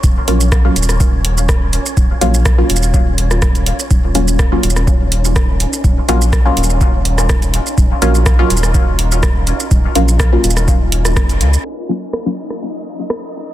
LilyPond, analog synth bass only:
\new Staff \with { instrumentName = "Analog synth bass" } { \clef bass \time 4/4 \key ees \minor \tempo 4 = 124 ees,,8 bes,,4 ees,,2 r8 | ees,,8 bes,,4 ees,,2 r8 | ees,,4. ees,,2 r8 | ees,,8 bes,,4 ees,,2 r8 |
ees,,8 bes,,4 ees,,2 r8 | ees,,8 bes,,4 ees,,4. f,,8 des,8 | r1 | }